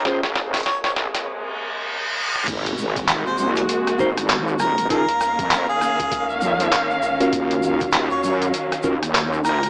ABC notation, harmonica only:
X:1
M:4/4
L:1/16
Q:"Swing 16ths" 1/4=99
K:Abmix
V:1 name="Harmonica"
z4 d d z8 z2 | z4 z c c z6 z B2 | B4- B A4 z6 z | z4 z d d z6 z B2 |]